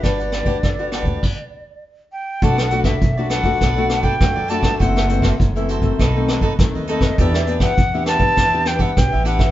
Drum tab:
CC |--------x-------|----------------|----------------|----------------|
HH |xxx-x-xx--------|x-xxx-xxx-x-x-x-|x-x-xxxxx-x-x-x-|x-xxx-xxx-x-x-x-|
SD |r-r-r-r---------|-r-r--r-r-r-r--r|-r-r----r-r-r--r|-r-r--r-r-r-r--r|
BD |o--oo--oo-------|o--oo--oo--oo--o|o--oo--oo--oo--o|o--oo--oo--oo--o|